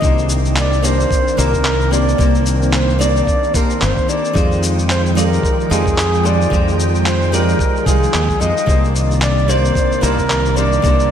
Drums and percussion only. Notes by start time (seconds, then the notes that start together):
0.02 kick, shaker
0.18 shaker
0.29 shaker
0.46 shaker
0.56 clap, shaker
0.73 shaker
0.84 shaker
1.00 shaker
1.11 kick, shaker
1.28 shaker
1.39 shaker
1.53 kick, shaker
1.65 clap, shaker
1.81 shaker
1.93 shaker
2.09 shaker
2.19 kick, shaker
2.35 shaker
2.46 shaker
2.62 shaker
2.73 clap, shaker
2.89 shaker
3.01 shaker
3.17 shaker
3.27 kick, shaker
3.43 shaker
3.54 kick, shaker
3.70 shaker
3.81 clap, shaker
3.97 kick, shaker
4.09 shaker
4.25 shaker
4.35 kick, shaker
4.52 shaker
4.63 shaker
4.79 shaker
4.90 clap, shaker
5.06 shaker
5.17 shaker
5.33 shaker
5.43 kick, shaker
5.60 shaker
5.72 shaker
5.86 kick, shaker
5.98 clap, shaker
6.14 shaker
6.26 shaker
6.42 shaker
6.51 kick, shaker
6.68 shaker
6.80 shaker
6.95 shaker
7.06 clap, shaker
7.22 shaker
7.33 shaker
7.49 shaker
7.59 kick, shaker
7.76 shaker
7.86 kick, shaker
8.03 shaker
8.14 clap, shaker
8.29 kick, shaker
8.42 shaker
8.57 shaker
8.67 kick, shaker
8.84 shaker
8.96 shaker
9.11 shaker
9.22 clap, shaker
9.38 shaker
9.49 shaker
9.65 shaker
9.75 kick, shaker
9.92 shaker
10.03 shaker
10.18 kick, shaker
10.30 clap, shaker
10.46 shaker
10.57 shaker
10.73 shaker
10.84 kick, shaker
11.00 shaker